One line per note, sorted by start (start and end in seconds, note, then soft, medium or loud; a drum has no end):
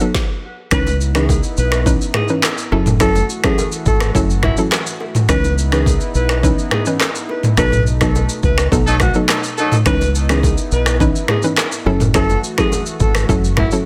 0.00 0.16 F#3 medium
0.00 0.16 B3 medium
0.00 0.16 D#4 medium
0.00 0.16 A4 medium
0.00 shaker medium
0.15 kick loud
0.15 snare medium
0.71 1.40 C#2 loud
0.71 0.88 E3 medium
0.71 2.70 B3 medium
0.71 0.88 C#4 medium
0.71 2.70 D#4 medium
0.71 0.88 D#4 medium
0.71 2.70 E4 medium
0.71 0.88 B4 loud
0.71 0.97 B4 loud
0.71 finger snap medium
0.71 kick loud
0.71 cross-stick loud
0.71 low conga medium
0.71 shaker medium
0.87 low bongo medium
0.87 shaker soft
1.01 shaker medium
1.15 1.30 E3 medium
1.15 1.30 C#4 medium
1.15 1.30 D#4 medium
1.15 1.40 G#4 medium
1.15 1.30 B4 medium
1.15 finger snap medium
1.15 cross-stick loud
1.15 shaker medium
1.29 kick loud
1.29 high bongo medium
1.29 low conga medium
1.29 shaker medium
1.43 shaker medium
1.57 1.95 B1 loud
1.57 1.82 B4 medium
1.57 shaker soft
1.72 finger snap medium
1.72 cross-stick loud
1.72 shaker medium
1.86 2.02 E3 loud
1.86 2.02 C#4 medium
1.86 2.02 D#4 medium
1.86 2.02 B4 loud
1.86 kick loud
1.86 low conga medium
1.86 shaker medium
2.01 shaker medium
2.14 2.28 G#4 medium
2.14 finger snap medium
2.14 cross-stick medium
2.14 mid tom medium
2.14 low bongo medium
2.28 2.44 E3 medium
2.28 2.44 C#4 medium
2.28 2.45 D#4 medium
2.28 2.45 B4 medium
2.28 shaker medium
2.43 finger snap medium
2.43 cross-stick loud
2.43 clap loud
2.43 high bongo medium
2.43 shaker medium
2.58 shaker medium
2.72 3.21 F#1 loud
2.72 5.27 E3 medium
2.72 2.98 F#3 medium
2.72 5.27 A3 medium
2.72 2.98 C#4 medium
2.72 2.98 E4 medium
2.72 5.27 F#4 medium
2.72 2.98 A4 loud
2.72 2.85 A4 medium
2.72 high bongo medium
2.86 mid tom medium
2.86 high bongo medium
2.86 low bongo medium
2.86 shaker medium
3.00 3.16 F#3 loud
3.00 3.16 C#4 medium
3.00 3.16 E4 medium
3.00 3.17 A4 loud
3.00 3.25 A4 loud
3.00 finger snap medium
3.00 kick loud
3.00 cross-stick loud
3.00 low conga medium
3.00 shaker medium
3.16 low bongo medium
3.16 shaker medium
3.30 shaker medium
3.44 3.59 F#3 medium
3.44 3.59 C#4 medium
3.44 3.59 E4 medium
3.44 3.69 G#4 medium
3.44 3.59 A4 medium
3.44 finger snap medium
3.44 kick medium
3.44 cross-stick loud
3.44 shaker medium
3.58 high bongo medium
3.58 low conga medium
3.58 shaker medium
3.72 shaker medium
3.86 4.11 G#1 loud
3.86 4.11 A4 medium
3.86 kick medium
3.86 shaker soft
4.00 finger snap medium
4.00 cross-stick loud
4.00 shaker medium
4.15 4.52 F#1 loud
4.15 4.31 F#3 loud
4.15 4.31 C#4 medium
4.15 4.31 E4 medium
4.15 4.31 A4 loud
4.15 kick medium
4.15 low conga medium
4.15 shaker medium
4.30 shaker medium
4.43 4.57 E4 medium
4.43 finger snap medium
4.43 kick medium
4.43 cross-stick medium
4.43 mid tom medium
4.43 low bongo medium
4.57 4.73 F#3 medium
4.57 4.73 C#4 medium
4.57 4.73 E4 medium
4.57 4.73 A4 medium
4.57 shaker soft
4.72 finger snap medium
4.72 cross-stick loud
4.72 clap loud
4.72 high bongo medium
4.72 shaker medium
4.87 shaker medium
5.01 high bongo medium
5.15 mid tom medium
5.15 high bongo medium
5.15 low bongo medium
5.15 shaker medium
5.29 5.97 C#2 loud
5.29 5.45 E3 loud
5.29 7.55 B3 medium
5.29 5.45 C#4 medium
5.29 7.55 D#4 medium
5.29 5.45 D#4 medium
5.29 7.55 E4 medium
5.29 5.45 B4 loud
5.29 5.54 B4 loud
5.29 finger snap medium
5.29 kick loud
5.29 cross-stick loud
5.29 low conga medium
5.29 shaker medium
5.44 low bongo medium
5.44 shaker soft
5.58 shaker medium
5.72 5.87 E3 medium
5.72 5.87 C#4 medium
5.72 5.87 D#4 medium
5.72 5.97 G#4 medium
5.72 5.88 B4 medium
5.72 finger snap medium
5.72 cross-stick loud
5.72 shaker medium
5.86 kick loud
5.86 high bongo medium
5.86 low conga medium
5.86 shaker medium
6.01 shaker medium
6.15 6.52 B1 medium
6.15 6.40 B4 medium
6.15 shaker soft
6.29 finger snap medium
6.29 cross-stick medium
6.29 shaker medium
6.43 6.59 E3 medium
6.43 6.59 C#4 medium
6.43 6.59 D#4 medium
6.43 6.59 B4 loud
6.43 kick loud
6.43 low conga medium
6.43 shaker medium
6.59 shaker medium
6.71 6.85 G#4 medium
6.71 finger snap medium
6.71 cross-stick medium
6.71 mid tom medium
6.71 low bongo medium
6.86 7.01 E3 medium
6.86 7.02 C#4 medium
6.86 7.02 D#4 medium
6.86 7.02 B4 medium
6.86 shaker medium
7.00 finger snap medium
7.00 cross-stick loud
7.00 clap loud
7.00 high bongo medium
7.00 shaker medium
7.15 shaker medium
7.29 7.42 B4 medium
7.29 high bongo medium
7.43 mid tom medium
7.43 high bongo medium
7.43 low bongo medium
7.43 shaker medium
7.57 8.26 B1 loud
7.57 9.84 B2 medium
7.57 7.73 F#3 medium
7.57 9.84 A3 medium
7.57 7.74 B3 medium
7.57 9.84 D#4 medium
7.57 7.74 D#4 medium
7.57 7.74 A4 loud
7.57 7.83 B4 loud
7.57 finger snap medium
7.57 kick loud
7.57 cross-stick loud
7.57 low conga medium
7.57 shaker medium
7.72 mid tom loud
7.72 low bongo medium
7.72 shaker soft
7.87 shaker medium
8.01 8.16 F#3 medium
8.01 8.16 B3 medium
8.01 8.16 D#4 medium
8.01 8.16 A4 medium
8.01 8.26 A4 medium
8.01 finger snap medium
8.01 kick medium
8.01 cross-stick loud
8.01 shaker medium
8.15 high bongo medium
8.15 low conga medium
8.15 shaker medium
8.29 shaker medium
8.43 8.68 C#2 medium
8.43 8.68 B4 medium
8.43 kick medium
8.43 shaker soft
8.58 finger snap medium
8.58 cross-stick loud
8.58 shaker medium
8.72 9.09 B1 loud
8.72 8.88 F#3 medium
8.72 8.88 B3 medium
8.72 8.88 D#4 medium
8.72 8.88 A4 loud
8.72 kick medium
8.72 low conga medium
8.72 shaker medium
8.87 8.95 F#3 loud
8.87 8.95 D#4 loud
8.87 8.95 A4 loud
8.87 shaker medium
9.00 9.14 F#4 medium
9.00 finger snap medium
9.00 kick medium
9.00 cross-stick loud
9.00 low bongo medium
9.00 shaker soft
9.14 9.30 F#3 medium
9.14 9.30 B3 medium
9.14 9.30 D#4 medium
9.14 9.30 A4 medium
9.14 shaker medium
9.29 9.42 F#3 medium
9.29 9.42 D#4 medium
9.29 9.42 A4 loud
9.29 finger snap medium
9.29 cross-stick loud
9.29 clap loud
9.29 high bongo medium
9.29 shaker medium
9.44 shaker medium
9.57 9.76 F#3 loud
9.57 9.76 D#4 medium
9.57 9.76 A4 loud
9.57 high bongo medium
9.57 shaker medium
9.72 mid tom medium
9.72 high bongo medium
9.72 low bongo medium
9.72 shaker medium
9.86 10.55 C#2 loud
9.86 10.02 E3 medium
9.86 11.84 B3 medium
9.86 10.02 C#4 medium
9.86 11.84 D#4 medium
9.86 10.02 D#4 medium
9.86 11.84 E4 medium
9.86 10.02 B4 loud
9.86 10.11 B4 loud
9.86 finger snap medium
9.86 kick loud
9.86 cross-stick loud
9.86 low conga medium
9.86 shaker medium
10.01 low bongo medium
10.01 shaker soft
10.15 shaker medium
10.29 10.44 E3 medium
10.29 10.45 C#4 medium
10.29 10.45 D#4 medium
10.29 10.54 G#4 medium
10.29 10.45 B4 medium
10.29 finger snap medium
10.29 cross-stick loud
10.29 shaker medium
10.43 kick loud
10.43 high bongo medium
10.43 low conga medium
10.43 shaker medium
10.58 shaker medium
10.72 11.09 B1 loud
10.72 10.97 B4 medium
10.72 shaker soft
10.86 finger snap medium
10.86 cross-stick loud
10.86 shaker medium
11.00 11.16 E3 loud
11.00 11.16 C#4 medium
11.00 11.17 D#4 medium
11.00 11.17 B4 loud
11.00 kick medium
11.00 low conga medium
11.00 shaker medium
11.16 shaker medium
11.28 11.42 G#4 medium
11.28 finger snap medium
11.28 cross-stick medium
11.28 mid tom medium
11.28 low bongo medium
11.43 11.59 E3 medium
11.43 11.59 C#4 medium
11.43 11.59 D#4 medium
11.43 11.59 B4 medium
11.43 shaker soft
11.57 finger snap medium
11.57 cross-stick loud
11.57 clap loud
11.57 high bongo medium
11.57 shaker medium
11.72 shaker medium
11.86 12.35 F#1 loud
11.86 13.86 E3 medium
11.86 12.12 F#3 medium
11.86 13.86 A3 medium
11.86 12.13 C#4 medium
11.86 12.13 E4 medium
11.86 13.86 F#4 medium
11.86 12.13 A4 loud
11.86 11.99 A4 medium
11.86 high bongo medium
12.00 mid tom medium
12.00 high bongo medium
12.00 low bongo medium
12.00 shaker medium
12.14 12.31 F#3 medium
12.14 12.31 C#4 medium
12.14 12.31 E4 medium
12.14 12.31 A4 loud
12.14 12.40 A4 loud
12.14 finger snap medium
12.14 kick loud
12.14 cross-stick loud
12.14 low conga medium
12.14 shaker medium
12.30 low bongo medium
12.30 shaker soft
12.44 shaker medium
12.58 12.73 F#3 medium
12.58 12.73 C#4 medium
12.58 12.73 E4 medium
12.58 12.83 G#4 medium
12.58 12.73 A4 medium
12.58 finger snap medium
12.58 kick medium
12.58 cross-stick loud
12.58 shaker medium
12.72 high bongo medium
12.72 low conga medium
12.72 shaker medium
12.86 shaker medium
13.00 13.25 G#1 medium
13.00 13.25 A4 medium
13.00 kick medium
13.00 shaker soft
13.15 finger snap medium
13.15 cross-stick loud
13.15 shaker medium
13.29 13.66 F#1 loud
13.29 13.45 F#3 loud
13.29 13.45 C#4 medium
13.29 13.45 E4 medium
13.29 13.45 A4 loud
13.29 kick loud
13.29 low conga medium
13.29 shaker medium
13.44 shaker medium
13.57 13.71 E4 medium
13.57 finger snap medium
13.57 kick medium
13.57 cross-stick medium
13.57 mid tom medium
13.57 low bongo medium
13.71 13.86 F#3 medium
13.71 13.86 C#4 medium
13.71 13.86 E4 medium
13.71 13.86 A4 medium
13.71 shaker medium